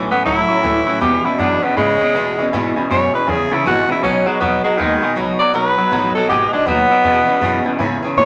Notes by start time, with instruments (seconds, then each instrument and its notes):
Already playing: upright bass B1, steel-string acoustic guitar A2 E3 F#3 A3 C#4 F#4
0.11 clean electric guitar A2 E3, steel-string acoustic guitar F#3 A3 C#4 F#4, tenor saxophone B3, honky-tonk piano C#5 E5 A5, muted upright bass stroke
0.25 upright bass C#2, clean electric guitar A2 F#3, steel-string acoustic guitar F#3 A3 C#4 F#4, tenor saxophone E4, honky-tonk piano C#5 E5 A5
0.48 clean electric guitar A2 F#3, steel-string acoustic guitar F#3 A3 C#4 F#4, honky-tonk piano C#5 E5 A5
0.63 upright bass D2, clean electric guitar A2 E3, steel-string acoustic guitar A2 E3 F#3 A3 C#4 F#4, honky-tonk piano C#5 E5 A5
0.86 clean electric guitar A2 E3, steel-string acoustic guitar F#3 A3 C#4 F#4, honky-tonk piano C#5 E5 A5
1.00 upright bass E2, clean electric guitar E2 B2, steel-string acoustic guitar E3 G#3 B3 C#4 G#4, tenor saxophone G4, honky-tonk piano B4 E5 G#5
1.24 clean electric guitar E2 B2, steel-string acoustic guitar B3 C#4 G#4, tenor saxophone E4, honky-tonk piano B4 E5 B5, muted upright bass stroke
1.39 clean electric guitar E2 B2, upright bass F#2, steel-string acoustic guitar E3 G#3 B3 C#4 G#4, tenor saxophone D4, honky-tonk piano B4 E5 F#5
1.63 clean electric guitar E2 B2, tenor saxophone B3, steel-string acoustic guitar B3 C#4 G#4, honky-tonk piano B4 E5 G#5
1.76 clean electric guitar E2 C#3, upright bass G#2, steel-string acoustic guitar G#3 B3 C#4 G#4, tenor saxophone G#3, honky-tonk piano B4 E5 B5
2.00 clean electric guitar E2 C#3, steel-string acoustic guitar B3 C#4 G#4, honky-tonk piano B4 E5 G#5, muted upright bass stroke
2.14 clean electric guitar E2 B2, upright bass A2, steel-string acoustic guitar E3 G#3 B3 C#4 G#4, honky-tonk piano B4 E5 B5
2.38 clean electric guitar E2 B2, steel-string acoustic guitar B3 C#4 G#4, honky-tonk piano B4 E5 G#5, muted upright bass stroke
2.52 clean electric guitar E2 B2, upright bass G#2, steel-string acoustic guitar E3 G#3 B3 C#4 G#4, honky-tonk piano B4 E5 G#5
2.76 clean electric guitar E2 B2, steel-string acoustic guitar B3 C#4 G#4, honky-tonk piano B4 E5 G#5, muted upright bass stroke
2.90 clean electric guitar E2 B2, upright bass F#2, steel-string acoustic guitar E3 G#3 B3 C#4 G#4, honky-tonk piano B4 E5 G#5, tenor saxophone C#5
3.13 clean electric guitar E2 B2, steel-string acoustic guitar B3 C#4 G#4, honky-tonk piano B4 E5 G#5, tenor saxophone B4
3.26 clean electric guitar E2 C#3, upright bass E2, steel-string acoustic guitar G#3 B3 C#4 G#4, tenor saxophone G#4, honky-tonk piano B4 E5 G#5
3.51 clean electric guitar E2 C#3, steel-string acoustic guitar B3 C#4 G#4, tenor saxophone E4, honky-tonk piano B4 E5 G#5, muted upright bass stroke
3.65 upright bass G#1, clean electric guitar E2 B2, steel-string acoustic guitar E3 G#3 B3 C#4 G#4, tenor saxophone F#4, honky-tonk piano B4 E5 G#5
3.89 clean electric guitar E2 B2, steel-string acoustic guitar B3 C#4 G#4, tenor saxophone E4, honky-tonk piano B4 E5 B5
4.03 upright bass B1, clean electric guitar B2 F#3, steel-string acoustic guitar B2 G#3 B3 D#4 F#4, tenor saxophone C#4, honky-tonk piano B4 D#5 F#5
4.26 clean electric guitar B2 F#3, tenor saxophone G#3, steel-string acoustic guitar B3 D#4 F#4, honky-tonk piano B4 D#5 F#5, muted upright bass stroke
4.40 upright bass E2, steel-string acoustic guitar B2 G#3 B3 D#4 F#4, clean electric guitar B2 F#3, tenor saxophone B3, honky-tonk piano B4 D#5 F#5
4.64 clean electric guitar B2 F#3, tenor saxophone G#3, steel-string acoustic guitar B3 D#4 F#4, honky-tonk piano B4 D#5 F#5, muted upright bass stroke
4.78 upright bass D#2, clean electric guitar B2 G#3, tenor saxophone D#3, steel-string acoustic guitar G#3 B3 D#4 F#4, honky-tonk piano B4 D#5 F#5
5.02 clean electric guitar B2 G#3, steel-string acoustic guitar B3 D#4 F#4, honky-tonk piano B4 D#5 F#5
5.15 upright bass C#2, steel-string acoustic guitar B2 G#3 B3 D#4 F#4, clean electric guitar B2 F#3, honky-tonk piano B4 D#5 F#5
5.39 clean electric guitar B2 F#3, steel-string acoustic guitar B3 D#4 F#4, honky-tonk piano B4 F#5, tenor saxophone D5, muted upright bass stroke
5.53 upright bass B1, steel-string acoustic guitar B2 G#3 B3 D#4 F#4, clean electric guitar B2 F#3, honky-tonk piano B4 D#5 F#5, tenor saxophone B4
5.77 clean electric guitar B2 F#3, steel-string acoustic guitar B3 D#4 F#4, honky-tonk piano B4 D#5 F#5
5.91 upright bass A1, steel-string acoustic guitar B2 G#3 B3 D#4 F#4, clean electric guitar B2 F#3, honky-tonk piano B4 D#5 F#5
6.14 clean electric guitar B2 F#3, steel-string acoustic guitar B3 D#4 F#4, tenor saxophone A4, honky-tonk piano B4 D#5 G#5, muted upright bass stroke
6.28 upright bass G#1, clean electric guitar B2 G#3, steel-string acoustic guitar G#3 B3 D#4 F#4, tenor saxophone G4, honky-tonk piano B4 D#5 F#5
6.51 clean electric guitar B2 G#3, steel-string acoustic guitar B3 D#4 F#4, tenor saxophone D4, honky-tonk piano B4 D#5 F#5, muted upright bass stroke
6.66 upright bass D#2, steel-string acoustic guitar B2 G#3 B3 D#4 F#4, clean electric guitar B2 F#3, tenor saxophone B3, honky-tonk piano B4 D#5 F#5
6.90 clean electric guitar B2 F#3, steel-string acoustic guitar B3 D#4 F#4, honky-tonk piano B4 D#5 G#5, muted upright bass stroke
7.03 upright bass E2, clean electric guitar E2 B2, steel-string acoustic guitar E3 B3 C#4 G#4, honky-tonk piano B4 E5 G#5
7.27 clean electric guitar E2 B2, steel-string acoustic guitar B3 C#4 G#4, honky-tonk piano B4 E5 B5, muted upright bass stroke
7.41 clean electric guitar E2 B2, upright bass F#2, steel-string acoustic guitar E3 B3 C#4 G#4, honky-tonk piano B4 E5 B5
7.64 clean electric guitar E2 B2, steel-string acoustic guitar B3 C#4 G#4, honky-tonk piano B4 E5 G#5
7.79 clean electric guitar E2 C#3, upright bass G#2, steel-string acoustic guitar E3 B3 C#4 G#4, honky-tonk piano B4 E5 G#5
8.02 clean electric guitar E2 C#3, steel-string acoustic guitar B3 C#4 G#4, honky-tonk piano B4 E5 G#5
8.17 clean electric guitar E2 B2, upright bass A2, steel-string acoustic guitar E3 B3 C#4 G#4, honky-tonk piano B4 E5 G#5, tenor saxophone C#5